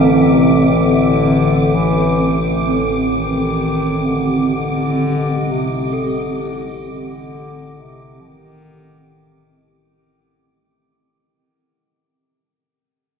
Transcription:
Already playing: A1 D3 E3 A3 C4 A4 E5 G5 D6
0.34 C3
0.75 E3
0.83 D3
1.75 E3
3.09 D#5
3.13 D#3
3.19 G4
4.07 D3
4.55 D3
5.51 C3
5.93 A4
6.89 D3
7.80 C3
8.21 F3
8.28 D#3

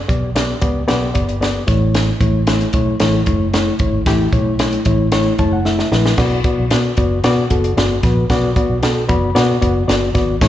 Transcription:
Already playing: G2
0.08 B1 B3 G4 D5, kick, closed hi-hat
0.35 B3 G4 D5, snare, closed hi-hat
0.62 C#2 B3 G4 D5, kick, closed hi-hat
0.88 B1 B3 G4 D5, snare, closed hi-hat
1.14 G1 B3 G4 D5, kick, closed hi-hat
1.29 closed hi-hat
1.41 B3 G4 D5, snare, closed hi-hat
1.67 A1 A2 A3 E4 C#5, kick, snare, closed hi-hat
1.95 snare, closed hi-hat
2.21 A1 A3 E4 C#5, kick, closed hi-hat
2.47 A3 E4 C#5, snare, closed hi-hat
2.61 closed hi-hat
2.73 B1 A3 E4 C#5, kick, closed hi-hat
3.00 A1 A3 E4 C#5, snare, closed hi-hat
3.26 F#1 A3 E4 C#5, kick, closed hi-hat
3.53 A3 E4 C#5, snare, closed hi-hat
3.79 G#1 A2 A3 E4 C#5, kick, closed hi-hat
4.06 A1 A3 E4 G4, kick, snare, closed hi-hat
4.33 B1 A3 E4 C#5, kick, closed hi-hat
4.59 A3 E4 C#5, snare, closed hi-hat
4.72 closed hi-hat
4.85 A1 A3 E4 C#5, kick, closed hi-hat
5.12 A3 E4 C#5, snare, closed hi-hat
5.38 F#1 A3 E4 C#5 A5, kick, closed hi-hat
5.53 F#5
5.65 A3 E4 E5, snare
5.79 snare
5.91 A#1 A3 E4 B4, snare
6.06 snare
6.18 B1 B2 B3 F#4 D5, kick, snare, crash
6.44 B3 F#4 D5, kick, closed hi-hat
6.58 B1
6.71 B2 B3 F#4 D5, snare, closed hi-hat
6.97 F#1 B3 F#4 D5, kick, closed hi-hat
7.24 B2 B3 F#4 D5, snare, closed hi-hat
7.50 F#1 B3 F#4 A4, kick, closed hi-hat
7.64 closed hi-hat
7.77 G1 B3 F#4 D5, snare, closed hi-hat
8.03 A#1 B3 F#4 B4, kick, snare, closed hi-hat
8.30 B1 B2 B3 F#4 D5, kick, snare, closed hi-hat
8.56 B3 F#4 D5, kick, closed hi-hat
8.69 B1
8.82 B2 B3 F#4 A4, snare, closed hi-hat
9.09 F#1 B3 F#4 D5 B5, kick, closed hi-hat
9.35 B2 B3 F#4 D5 F#5, snare, closed hi-hat
9.62 F#1 B3 F#4 D5, kick, closed hi-hat
9.88 G1 B3 F#4 D5, snare, closed hi-hat
10.14 G#1 B3 F#4 D5, kick, snare, closed hi-hat
10.41 A1 A2 A3 E4 C#5, kick, snare, closed hi-hat

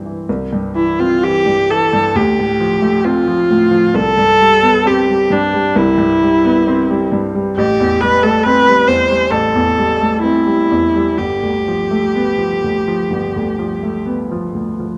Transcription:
Already playing: C2 G2 E3 G3 C4
0.06 E3
0.29 C2
0.53 G2
0.75 E3 E4
1.00 C4 F4
1.24 E3 G4
1.46 G2
1.70 E3 A4
1.93 G2
2.15 D2 G4
2.39 A2
2.60 F3
2.82 A3
3.05 C4 F4
3.27 F3
3.51 A2
3.71 F3
3.94 C2 A4
4.17 G2
4.40 G3
4.62 B3
4.85 C4 G4
5.09 G3
5.30 G2 D4
5.54 G3
5.76 C2 E4
5.98 G2
6.22 G3
6.45 B3
6.67 C4
6.90 G3
7.12 G2
7.35 G3
7.56 A1 G4
7.80 E2
8.01 G3 B4
8.23 A3 A4
8.43 C4 B4
8.68 G3
8.88 E2 C5
9.11 G3
9.31 A1 A4
9.56 E2
9.78 G3
10.01 A3
10.22 C4 E4
10.46 G3
10.71 E2
10.96 G3
11.18 G1 G4
11.43 D2
11.68 F3
11.91 A3
12.15 B3
12.38 F3
12.64 D2
12.88 F3
13.10 G1
13.36 D2
13.59 F3
13.83 A3
14.06 B3
14.31 F3
14.55 D2
14.80 F3

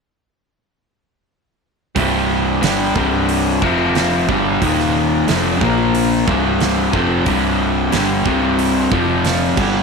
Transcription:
1.96 C1 C2 G2 C3, kick, open hi-hat
2.62 G1 G2 D3 G3, snare, open hi-hat
2.95 C1 C2 G2 C3, kick
3.29 open hi-hat
3.61 F1 F2 C3 F3, kick
3.95 snare, open hi-hat
4.28 G1 G2 D3 G3, kick
4.61 D#1 D#2 A#2 D#3, kick, open hi-hat
4.80 snare
5.28 F1 F2 C3 F3, snare, open hi-hat
5.61 A#1 A#2 F3 A#3, kick
5.95 open hi-hat
6.26 C1 C2 G2 C3, kick
6.60 snare, open hi-hat
6.93 F1 F2 C3 F3, kick
7.25 C1 C2 G2 C3, kick, open hi-hat
7.92 G1 G2 D3 G3, snare, open hi-hat
8.25 C1 C2 G2 C3, kick
8.59 open hi-hat
8.91 F1 F2 C3 F3, kick
9.24 snare, open hi-hat
9.57 G1 G2 D3 G3, kick, crash

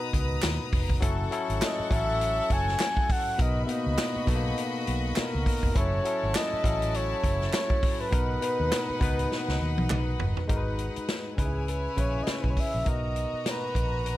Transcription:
Already playing: B2 B3 D#4 A#4 B4 A#5 D#6
0.13 C#2, kick, closed hi-hat
0.42 D#2, snare, clap, closed hi-hat
0.73 F1, kick, open hi-hat
0.90 kick
1.00 F#1 F#3 C#4 E4 A4 F#5 C#6, kick, closed hi-hat
1.30 F#3 C#4 E4 A4, closed hi-hat
1.50 G#1, closed hi-hat
1.62 D#5, snare, clap, closed hi-hat
1.80 muted fingered electric bass stroke
1.89 A1 F#3 C#4 E4 A4 E5, kick, closed hi-hat
2.21 closed hi-hat
2.50 F#1 G#5, kick, closed hi-hat
2.68 snare
2.79 snare, clap, closed hi-hat
2.97 kick
3.09 F#5, kick, open hi-hat
3.38 B1 B2 B3 D#4 F#4 A#4 D#5 B5, kick, closed hi-hat
3.65 B2 B3 E5, closed hi-hat
3.69 A#3 D#4 D#5
3.86 C#2
3.98 snare, clap, closed hi-hat
4.16 muted fingered electric bass stroke
4.26 B1 B2 B3 D#4 A4, kick, closed hi-hat
4.35 A#3
4.58 closed hi-hat
4.87 B1, closed hi-hat
5.16 A#4, muted fingered electric bass stroke, snare, clap, closed hi-hat
5.35 C#2
5.46 kick, open hi-hat
5.63 F1, kick
5.75 F#1 F#3 C#4 E4 F#4 A4 C#5 A5, kick, closed hi-hat
6.04 F#3 C#4 E4 A4, closed hi-hat
6.23 G#1
6.35 D#5, snare, clap, closed hi-hat
6.53 muted fingered electric bass stroke
6.63 A1 F#3 C#4 E4 A4, kick, closed hi-hat
6.82 closed hi-hat
6.94 C#5, closed hi-hat
7.24 F#1, kick, closed hi-hat
7.42 snare
7.53 C#5, snare, clap, closed hi-hat
7.70 kick
7.83 kick, open hi-hat
8.01 B4
8.11 B1 B2 B3 D#4 A#4 B4 F#5, kick, closed hi-hat
8.41 B2 B3 D#4 B4, closed hi-hat
8.60 D#2
8.72 snare, clap, closed hi-hat
8.90 muted fingered electric bass stroke
9.00 C#2 B2 B3 D#4 B4, kick, closed hi-hat
9.19 closed hi-hat
9.32 snare
9.48 C#2, snare
9.61 D#2
9.78 B1, high tom
9.90 B1, clap, mid tom
10.20 G1, floor tom
10.37 floor tom
10.47 G#1 G#3 D#4 F#4 A#4 B4 F#5, kick, closed hi-hat
10.57 B4
10.79 closed hi-hat
10.96 muted fingered electric bass stroke, closed hi-hat
11.08 snare, closed hi-hat
11.36 C#2 C#3 C#4 D#4 E4 G#4 B4 C#5 G#5, kick, closed hi-hat
11.45 E4
11.68 B4, closed hi-hat
11.96 A#1 C#3 C#4 E4 B4 C#5, kick, closed hi-hat
12.23 D#5, closed hi-hat
12.27 muted fingered electric bass stroke, snare
12.32 C#5
12.42 B1 B4, kick
12.50 C#5
12.57 E5, kick, open hi-hat
12.74 A#1
12.85 B1 B2 B3 D#4 F#4 A#4 D#5 A#5, kick, closed hi-hat
13.16 closed hi-hat
13.33 muted fingered electric bass stroke
13.46 B4, snare, closed hi-hat
13.75 A#1, kick, closed hi-hat
14.06 closed hi-hat

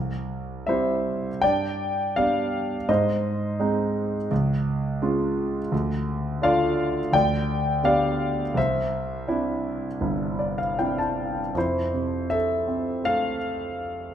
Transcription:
Already playing: C2
0.67 G3 C4 E4 C5 E5
1.42 G2 D5 G5
2.16 G3 B3 D4 D5 F5
2.89 G#2 C5 D#5
3.60 G#3 C4 D#4
4.31 C#2
5.02 G#3 C#4 F4
5.72 D2
6.42 A3 D4 F4 D5 F5
7.12 D2 D5 G5
7.83 B3 D4 G4 D5 F5
8.54 C2 C5 E5
9.28 C4 D4 E4
10.01 G1
10.39 D5
10.58 F5
10.79 C4 D4 E4 G5
10.98 A5
11.55 F2 E4 C5
11.94 C3
12.30 A4 E5
12.67 C4
13.04 A3 A4 F5

